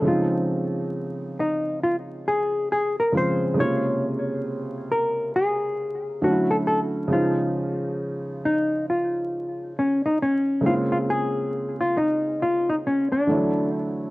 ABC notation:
X:1
M:4/4
L:1/16
Q:"Swing 16ths" 1/4=68
K:Bbm
V:1 name="Hollow-body jazz guitar"
F6 E2 F2 A2 A B c2 | d6 B2 A4 ^F =A A2 | F6 E2 F4 D E D2 | F F A3 F E2 F E D =D3 z2 |]
V:2 name="Felt piano" clef=bass
[D,F,A,CE]12- [D,F,A,CE]2 [D,F,A,CF]2 | [C,D,A,B,F]12 [=D,^F,=A,^C=D=E]4 | [D,F,A,Ec]16 | [D,A,B,C=EF]12 [=D,=E,^F,=A,E^c]4 |]